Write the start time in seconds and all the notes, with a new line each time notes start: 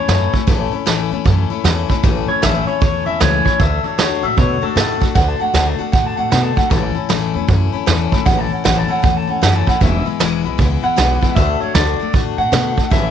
Already playing: C#5
0.08 F#2 A2 E3 A3 C#4 E4, snare
0.33 A3 C#4 E4, kick
0.47 A1 A2 E3 A3 C#4 E4, kick, open hi-hat
0.72 A3 C#4 E4, muted upright bass stroke
0.86 A1 A2 E3 A3 C#4 E4, snare, open hi-hat
1.11 E2 A3 C#4 E4
1.24 F#2 E3 A3 C#4 E4, kick, open hi-hat
1.50 A3 C#4 E4, muted upright bass stroke
1.64 E2 A2 E3 A3 C#4 E4, snare, open hi-hat
1.89 A3 C#4 E4, muted upright bass stroke, kick
2.03 A1 A2 E3 A3 C#4 E4, kick, open hi-hat
2.28 A3 C#4 E4 C#5, muted upright bass stroke
2.42 A1 A2 E3 A3 C#4 E4 E5, snare, open hi-hat
2.67 A3 C#4 E4 C#5, muted upright bass stroke
2.81 E2 E3 A3 C#4 E4 C#5, kick, open hi-hat
3.06 E2 A3 C#4 E4 E5
3.20 C#2 A2 E3 A3 C#4 E4 C#5, snare, open hi-hat
3.45 A3 C#4 E4 C#5, kick
3.59 D2 D3 A3 D4 F#4 E5, kick, open hi-hat
3.84 A3 D4 F#4 C#5, muted upright bass stroke
3.98 D2 D3 A3 D4 F#4 C#5, snare, open hi-hat
4.23 A2 A3 D4 F#4 E5
4.37 B2 D3 A3 D4 F#4 C#5, kick, open hi-hat
4.62 A3 D4 F#4 A4, muted upright bass stroke
4.76 A2 D3 A3 D4 F#4, snare, open hi-hat
5.00 A3 D4 F#4, muted upright bass stroke, kick
5.15 D2 D3 A3 D4 F#4 F#5, kick, open hi-hat
5.29 A5
5.40 A3 D4 F#4 F#5, muted upright bass stroke
5.54 D2 D3 A3 D4 F#4 F#5, snare, open hi-hat
5.67 A5
5.79 A3 D4 F#4 F#5, muted upright bass stroke
5.92 A2 D3 A3 D4 F#4 F#5, kick, open hi-hat
6.07 A5
6.17 A2 A3 D4 F#4 F#5
6.31 B2 D3 A3 D4 F#4 F#5, snare, open hi-hat
6.44 A5
6.56 A3 D4 F#4 F#5, muted upright bass stroke, kick
6.70 A1 A2 E3 A3 C#4 E4 A5, kick, open hi-hat
6.95 A3 C#4 E4, muted upright bass stroke
7.09 A1 A2 E3 A3 C#4 E4, snare, open hi-hat
7.34 E2 A3 C#4 E4
7.48 F#2 E3 A3 C#4 E4, kick, open hi-hat
7.72 A3 C#4 E4, muted upright bass stroke
7.86 E2 A2 E3 A3 C#4 E4, snare, open hi-hat
8.12 A3 C#4 E4, kick
8.25 A1 A2 E3 A3 C#4 E4 F#5, kick, open hi-hat
8.39 A5
8.50 A3 C#4 E4 F#5, muted upright bass stroke
8.64 A1 A2 E3 A3 C#4 E4 F#5, snare, open hi-hat
8.78 A5
8.88 A3 C#4 E4 F#5, muted upright bass stroke
9.02 E2 E3 A3 C#4 E4 F#5, kick, open hi-hat
9.17 A5
9.27 E2 A3 C#4 E4 F#5
9.42 F#2 A2 E3 A3 C#4 E4 F#5, snare, open hi-hat
9.56 A5
9.66 A3 C#4 E4 F#5, kick
9.81 E1 E2 B2 E3 G#3 B3 E4 E5, kick, open hi-hat
10.05 E3 G#3 B3 E4, muted upright bass stroke
10.19 E1 E2 B2 E3 G#3 B3 E4, snare, open hi-hat
10.44 B1 E3 G#3 B3 E4
10.58 C#2 E3 G#3 B3 E4, kick, open hi-hat
10.82 E3 G#3 B3 E4 F#5
10.96 B1 E2 B2 E3 G#3 B3 E4, snare, open hi-hat
11.21 E3 G#3 B3 E4, kick
11.35 D2 D3 A3 D4 F#4 E5, kick, open hi-hat
11.60 A3 D4 F#4 C#5, muted upright bass stroke
11.74 D2 D3 A3 D4 F#4 D5, snare, open hi-hat
11.99 A3 D4 F#4
12.13 A2 D3 A3 D4 F#4, kick, open hi-hat
12.37 A2 A3 D4 F#4 F#5
12.52 B2 D3 A3 D4 F#4, snare, open hi-hat
12.77 A3 D4 F#4, kick
12.90 A1 A2 E3 A3 C#4 E4 E5, kick, open hi-hat